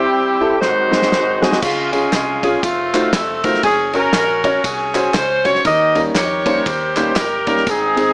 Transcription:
Already playing: C3 G3 C4 E4 G4
0.41 E4 G4 A4
0.60 G#2 D#3 F#3 G#3 C4 D#4 F#4 C5, snare
0.91 G#3 C4 D#4 F#4 C5, snare
1.02 snare
1.12 snare
1.42 G#3 C4 D#4 F#4 G#4 C5, snare
1.52 snare
1.62 C#2 C#3 G#3 C#4 F4, kick, crash, tambourine
1.93 C#4 F4 G#4, ride, tambourine
2.12 C2, snare, clap, ride, tambourine
2.43 C#4 F4 G#4, kick, ride, tambourine
2.63 F1 A3 C4 F4, kick, ride, tambourine
2.93 A3 D#4 F4 F#4 C5, snare, clap, ride, tambourine
3.13 F1 A4, kick, snare, clap, ride, tambourine
3.44 A3 D#4 F4 F#4 A#4 C5, kick, ride, tambourine
3.54 snare
3.63 F#1 C#4 G#4, kick, ride, tambourine
3.93 C#4 F#4 A#4, ride, tambourine
4.13 A#1, snare, clap, ride, tambourine
4.44 C#4 F#4 A#4 C#5, kick, ride, tambourine
4.64 C2 C#4 G#4, kick, ride, tambourine
4.94 C#4 F#4 C5, clap, ride, tambourine
5.14 C#2 C5, kick, snare, clap, ride, tambourine
5.44 C#4 F#4 C5 C#5, kick, ride, tambourine
5.55 snare
5.65 D#2 D#3 G4 A#4 D#5, kick, ride, tambourine
5.95 G3 A#3 C#4 D#4 A#4, ride, tambourine
6.15 F2 G4 A#4 C#5, snare, clap, ride, tambourine
6.46 G3 A#3 C#4 D#4 C5, kick, ride, tambourine
6.66 D#2 G4 C5, kick, ride, tambourine
6.96 G3 A#3 C#4 D#4 C5, snare, clap, ride, tambourine
7.16 G1 A#4, kick, snare, clap, ride, tambourine
7.47 G3 A#3 C#4 D#4 A#4, kick, ride, tambourine
7.57 snare
7.67 G#1 G#2 C4 D#4 G#4, kick, ride, tambourine
7.96 C4 D#4 G#4, ride, tambourine

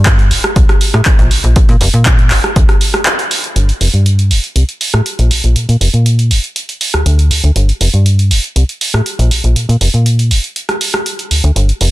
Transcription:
Already playing: G2
0.06 kick, clap, closed hi-hat
0.19 closed hi-hat
0.31 F1, open hi-hat
0.44 cross-stick, closed hi-hat
0.56 C2, kick, closed hi-hat
0.69 cross-stick, closed hi-hat
0.81 open hi-hat
0.94 A2, cross-stick, closed hi-hat
1.05 kick, clap, closed hi-hat
1.19 A#1, closed hi-hat
1.31 A#1, open hi-hat
1.44 A#1, closed hi-hat
1.56 kick, closed hi-hat
1.69 A#2, closed hi-hat
1.81 F1, open hi-hat
1.94 A#2, closed hi-hat
2.06 kick, clap, closed hi-hat
2.19 closed hi-hat
2.30 F1, clap, open hi-hat
2.44 cross-stick, closed hi-hat
2.56 D2, kick, closed hi-hat
2.69 cross-stick, closed hi-hat
2.81 open hi-hat
2.94 cross-stick, closed hi-hat
3.06 clap, closed hi-hat
3.19 closed hi-hat
3.31 open hi-hat
3.44 closed hi-hat
3.56 G1, closed hi-hat
3.69 closed hi-hat
3.81 F1, open hi-hat
3.94 G2, closed hi-hat
4.06 closed hi-hat
4.19 closed hi-hat
4.31 F1, open hi-hat
4.44 closed hi-hat
4.56 C2, closed hi-hat
4.69 closed hi-hat
4.81 open hi-hat
4.94 A2, cross-stick, closed hi-hat
5.06 closed hi-hat
5.19 A#1, closed hi-hat
5.31 open hi-hat
5.44 A#1, closed hi-hat
5.56 A#2, closed hi-hat
5.69 A#2, closed hi-hat
5.81 F1, open hi-hat
5.94 A#2, closed hi-hat
6.06 closed hi-hat
6.19 closed hi-hat
6.31 F1, open hi-hat
6.44 closed hi-hat
6.56 closed hi-hat
6.69 closed hi-hat
6.81 open hi-hat
6.94 D2, cross-stick, closed hi-hat
7.06 D2, closed hi-hat
7.19 closed hi-hat
7.31 D2, open hi-hat
7.44 D2, closed hi-hat
7.56 G1, closed hi-hat
7.69 closed hi-hat
7.81 F1, open hi-hat
7.94 G2, closed hi-hat
8.06 closed hi-hat
8.19 closed hi-hat
8.31 F1, open hi-hat
8.44 closed hi-hat
8.56 C2, closed hi-hat
8.69 closed hi-hat
8.81 open hi-hat
8.94 A2, cross-stick
9.06 closed hi-hat
9.19 A#1, closed hi-hat
9.31 A#1, open hi-hat
9.44 A#1, closed hi-hat
9.56 A#2, closed hi-hat
9.69 A#2, closed hi-hat
9.81 F1, open hi-hat
9.94 A#2, closed hi-hat
10.06 closed hi-hat
10.19 closed hi-hat
10.31 F1, open hi-hat
10.44 closed hi-hat
10.56 closed hi-hat
10.69 cross-stick, closed hi-hat
10.81 open hi-hat
10.94 cross-stick
11.06 closed hi-hat
11.19 closed hi-hat
11.31 D2, open hi-hat
11.44 D2, closed hi-hat
11.56 G1, closed hi-hat
11.69 closed hi-hat
11.81 F1, open hi-hat

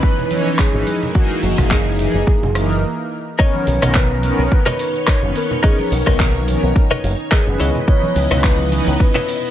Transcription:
Already playing: E3 D#4 B4
0.03 kick
0.19 low conga
0.30 E3 C#4 D#4 C#5, open hi-hat, high conga
0.59 G#4, kick, clap
0.73 G#1 E3 C#4 D#4 B4
0.87 G#3 D#4 E4 A#4, open hi-hat, high conga
1.03 low conga
1.15 E3 A#3 D#4 F#4 G#4, kick
1.43 F#1 F#4, open hi-hat, high conga
1.57 F#1 E3 A#3 D#4 G#4, kick, cross-stick, open hi-hat, low conga
1.71 G#4, kick, clap
1.98 E3 A#3 D#4 G#4, open hi-hat, high conga
2.14 F#1
2.27 kick
2.42 F#1, low conga
2.54 E3 A#3 D#4 A#4, cross-stick, open hi-hat
3.39 D#3 B3 C#4 D#4 A#4 B4 C#5 D#5, kick, crash, shaker
3.55 high conga
3.67 B1, muted clean electric guitar stroke, open hi-hat, shaker
3.82 B1 D#3 B3 C#4 A#4 B4 C#5 D#5, cross-stick, open hi-hat, low conga, shaker
3.94 B4, kick, clap, shaker
4.10 muted clean electric guitar stroke, high conga
4.23 D#3 B3 C#4 A#4, open hi-hat, high conga, shaker
4.38 B1, shaker
4.46 C#5
4.52 B4, kick, shaker
4.66 A#4 B4 C#5 D#5, clap, low conga
4.79 open hi-hat, shaker
4.95 shaker
5.07 A#4 B4 C#5 D#5, kick, clap, shaker
5.22 F#1 D#3 B3 C#4 B4
5.35 A#4, muted clean electric guitar stroke, open hi-hat, shaker
5.51 low conga, shaker
5.63 D#3 B3 C#4 G#4 A#4 B4 C#5 D#5, kick, shaker
5.79 high conga
5.91 B1 A#4, muted clean electric guitar stroke, open hi-hat, shaker
6.06 B1 D#3 B3 C#4 A#4 B4 C#5 D#5, kick, cross-stick, open hi-hat, low conga, shaker
6.20 kick, clap, shaker
6.35 muted clean electric guitar stroke, high conga
6.47 D#3 B3 C#4 A#4, open hi-hat, high conga, shaker
6.63 B1, shaker
6.76 kick, shaker
6.91 A#4 B4 C#5 D#5, low conga
7.04 F#1, open hi-hat, shaker
7.20 shaker
7.31 G#4 A#4 B4 C#5 D#5, kick, clap, shaker
7.47 F#1 D#3 B3 C#4 B4
7.59 C#2 B3 E4 B4 C#5 D#5, open hi-hat, shaker
7.75 low conga, shaker
7.87 E3 C#4 D#4 B4 C#5, kick, shaker
8.03 high conga
8.16 C#2, muted clean electric guitar stroke, open hi-hat, shaker
8.30 C#2 E3 C#4 D#4 E4 B4 C#5 D#5, cross-stick, open hi-hat, low conga, shaker
8.44 B4, kick, clap, shaker
8.59 muted clean electric guitar stroke, high conga
8.71 E3 C#4 D#4 B4, open hi-hat, high conga, shaker
8.87 C#2, shaker
9.00 B4, kick, shaker
9.15 E4 B4 C#5 D#5, clap, low conga
9.29 open hi-hat, shaker
9.44 shaker

